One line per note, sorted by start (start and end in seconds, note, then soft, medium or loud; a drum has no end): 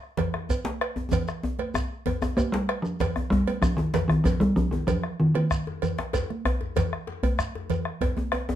0.03 bombo rim soft
0.17 cowbell medium
0.17 djembe slap medium
0.17 low conga medium
0.17 djembe bass medium
0.34 bombo rim medium
0.34 djembe slap medium
0.34 high conga soft
0.34 djembe tone medium
0.49 bombo low medium
0.49 cowbell soft
0.49 djembe tone medium
0.49 high conga soft
0.49 shekere medium
0.65 djembe slap loud
0.65 high conga medium
0.81 bombo rim medium
0.81 cowbell medium
0.96 djembe tone medium
1.12 bombo rim soft
1.12 bombo low loud
1.12 cowbell medium
1.12 djembe slap soft
1.12 djembe tone loud
1.12 high conga soft
1.12 low conga medium
1.12 djembe bass medium
1.12 shekere medium
1.27 bombo rim medium
1.27 djembe slap medium
1.27 shekere soft
1.43 bombo rim soft
1.43 djembe tone loud
1.58 bombo rim soft
1.58 cowbell soft
1.58 djembe tone medium
1.58 high conga medium
1.74 bombo rim medium
1.74 bombo low medium
1.74 djembe tone loud
1.74 shekere medium
2.06 cowbell medium
2.06 djembe tone loud
2.06 djembe bass medium
2.06 low conga medium
2.22 bombo rim medium
2.22 djembe slap soft
2.22 djembe tone loud
2.22 djembe tone medium
2.22 shekere soft
2.37 2.52 A#3 loud
2.37 bombo rim soft
2.37 bombo low medium
2.37 cowbell medium
2.37 shekere medium
2.52 2.84 G3 loud
2.52 djembe slap loud
2.52 high conga medium
2.69 bombo rim medium
2.69 cowbell medium
2.69 djembe slap soft
2.82 3.15 F3 medium
2.82 bombo rim soft
2.82 djembe tone medium
2.82 shekere soft
3.00 bombo rim soft
3.00 bombo low loud
3.00 cowbell medium
3.00 djembe slap loud
3.00 low conga medium
3.00 djembe bass medium
3.00 shekere medium
3.16 bombo rim medium
3.16 djembe tone medium
3.30 3.63 G3 loud
3.30 djembe slap medium
3.30 high conga soft
3.30 djembe tone medium
3.30 djembe bass medium
3.47 cowbell medium
3.47 djembe tone medium
3.47 high conga medium
3.62 3.78 F3 medium
3.62 bombo rim medium
3.62 bombo low loud
3.62 djembe bass medium
3.62 shekere medium
3.77 4.07 D#3 medium
3.77 djembe slap medium
3.77 djembe tone medium
3.94 bombo rim soft
3.94 cowbell medium
3.94 djembe slap loud
3.94 low conga medium
3.94 djembe bass medium
3.94 shekere soft
4.08 4.25 D#3 medium
4.08 bombo rim medium
4.08 djembe tone medium
4.24 4.40 F3 medium
4.24 bombo low loud
4.24 cowbell medium
4.24 djembe slap medium
4.24 djembe tone medium
4.24 djembe bass medium
4.24 shekere medium
4.40 4.58 G3 loud
4.40 bombo rim soft
4.40 djembe tone medium
4.40 high conga medium
4.56 4.73 F3 medium
4.56 djembe bass medium
4.71 4.89 D#3 medium
4.71 djembe slap medium
4.71 djembe tone medium
4.87 5.21 F3 medium
4.87 bombo rim soft
4.87 bombo low loud
4.87 cowbell medium
4.87 low conga medium
4.87 djembe bass medium
4.87 shekere medium
5.03 bombo rim medium
5.20 5.34 D#3 medium
5.20 high conga soft
5.20 djembe tone medium
5.35 5.94 D#3 medium
5.35 cowbell medium
5.35 high conga medium
5.51 bombo rim loud
5.51 bombo low loud
5.51 shekere medium
5.67 djembe slap medium
5.67 djembe tone medium
5.82 bombo rim soft
5.82 cowbell medium
5.82 djembe bass medium
5.82 low conga medium
5.82 shekere soft
5.98 bombo rim medium
5.98 djembe slap medium
6.13 bombo low loud
6.13 cowbell medium
6.13 djembe slap medium
6.13 djembe tone medium
6.13 high conga soft
6.13 shekere medium
6.30 bombo rim soft
6.30 high conga medium
6.45 bombo rim loud
6.45 cowbell medium
6.45 djembe bass medium
6.61 djembe slap medium
6.61 djembe tone medium
6.76 bombo rim soft
6.76 bombo low loud
6.76 cowbell medium
6.76 djembe slap medium
6.76 djembe bass medium
6.76 low conga medium
6.76 shekere medium
6.93 bombo rim medium
7.07 djembe slap medium
7.07 high conga soft
7.23 cowbell medium
7.23 high conga medium
7.23 djembe bass medium
7.39 bombo rim loud
7.39 bombo low loud
7.39 shekere medium
7.55 djembe slap medium
7.55 djembe tone medium
7.70 bombo rim soft
7.70 cowbell medium
7.70 low conga medium
7.70 djembe bass medium
7.70 shekere soft
7.85 bombo rim medium
8.01 bombo low loud
8.01 cowbell medium
8.01 djembe slap medium
8.01 high conga soft
8.01 djembe tone loud
8.01 djembe tone medium
8.17 bombo rim soft
8.17 high conga medium
8.17 djembe tone medium
8.32 bombo rim loud
8.32 cowbell medium
8.32 djembe tone medium
8.49 djembe slap medium
8.49 djembe tone loud
8.49 djembe tone medium